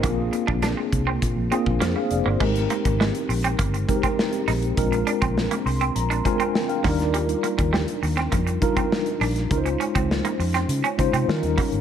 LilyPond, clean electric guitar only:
\new Staff \with { instrumentName = "Clean electric guitar" } { \time 4/4 \key aes \lydian \tempo 4 = 101 bes16 r8 d'16 d'16 r8 c'16 r8 c'16 r16 bes16 r8 bes16 | aes16 r16 bes16 r16 aes16 r8 c'16 bes16 r8 c'16 r8 ees'16 r16 | r8 d'16 c'16 r16 bes16 r16 c'16 r16 d'16 r16 c'16 r8 bes16 r16 | g16 r16 bes16 r16 g16 r8 c'16 bes16 r8 c'16 r8 d'16 r16 |
r8 des'16 c'16 r16 bes16 r16 c'16 r16 des'16 r16 c'16 r8 bes16 r16 | }